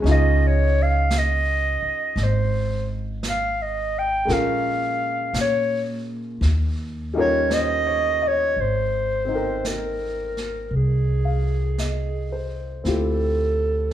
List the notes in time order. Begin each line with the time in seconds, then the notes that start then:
0.00 C#2 G#3 C#4
0.06 D#4 F4, brush sweep, snare
0.11 D#5
0.47 C#5
0.82 F5
1.11 brush sweep, snare, hi-hat pedal
1.18 D#5
1.82 muted upright bass stroke
2.16 G#1, brush sweep, snare
2.23 C5
3.23 brush sweep, snare, hi-hat pedal
3.29 F5
3.62 D#5
3.99 G5
4.25 A#1 G#3 A#3 C#4 F4, brush sweep, snare
4.30 A#4 F5
5.34 A#2, brush sweep, snare, hi-hat pedal
5.41 C#5
6.41 D#2, brush sweep, snare
7.14 G3 C#4 D#4 F4
7.18 A#4 C#5
7.50 C5 D#5, brush sweep, snare, hi-hat pedal
7.87 C#5
8.22 D#5
8.28 C#5
8.56 G#1, brush sweep
8.61 C5
9.25 C4 D#4
9.32 A#4 G5
9.65 A#4, brush sweep, snare, hi-hat pedal
10.37 snare
10.71 C2, brush sweep
10.76 G#4
11.25 F5
11.78 D#5, brush sweep, snare, hi-hat pedal
12.32 C5
12.84 D2 C4 E4 F4, brush sweep, snare
12.88 G4 A4